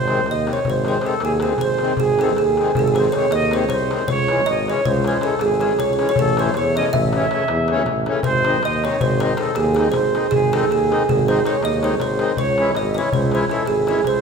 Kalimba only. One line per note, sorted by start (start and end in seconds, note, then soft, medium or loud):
0.00 0.29 C5 medium
0.31 0.50 D#5 medium
0.53 0.69 C#5 medium
0.70 0.86 C5 medium
0.88 1.05 C5 medium
1.06 1.23 A4 medium
1.25 1.33 G#4 medium
1.42 1.60 G#4 medium
1.61 2.00 C5 medium
2.00 2.18 G#4 medium
2.21 2.29 A4 medium
2.38 2.76 G#4 medium
2.77 2.81 G#4 medium
2.77 2.85 A4 medium
2.88 2.97 G#4 medium
2.96 3.12 C5 medium
3.12 3.29 C#5 medium
3.32 3.53 D#5 loud
3.53 3.71 C#5 medium
3.70 4.06 C5 loud
4.08 4.48 C#5 loud
4.46 4.68 D#5 medium
4.70 4.85 C#5 medium
4.86 5.05 C5 medium
5.08 5.24 C5 medium
5.23 5.41 A4 medium
5.41 5.60 G#4 loud
5.61 5.79 G#4 medium
5.80 5.92 C#5 loud
5.93 6.05 C#5 medium
6.09 6.19 C#5 loud
6.19 6.39 A4 medium
6.39 6.57 C5 medium
6.57 6.77 C#5 medium
6.77 6.85 D#5 medium
6.93 8.02 E5 loud
8.24 8.64 C5 medium
8.65 8.85 D#5 medium
8.85 9.01 C#5 medium
9.01 9.19 C5 medium
9.20 9.37 C5 medium
9.38 9.56 A4 medium
9.56 9.73 G#4 medium
9.75 9.83 G#4 medium
9.92 10.32 C5 medium
10.31 10.52 G#4 loud
10.53 10.71 A4 medium
10.72 11.08 G#4 medium
11.09 11.28 G#4 medium
11.28 11.45 C5 medium
11.47 11.63 C#5 medium
11.65 11.84 D#5 medium
11.84 12.01 C#5 medium
12.01 12.36 C5 medium
12.38 12.73 C#5 loud
12.77 12.92 D#5 medium
12.94 13.15 C#5 medium
12.94 12.98 D#5 medium
13.13 13.33 C5 medium
13.35 13.42 C5 medium
13.51 13.69 A4 medium
13.67 13.87 G#4 medium
13.88 14.06 G#4 medium
14.07 14.21 C5 medium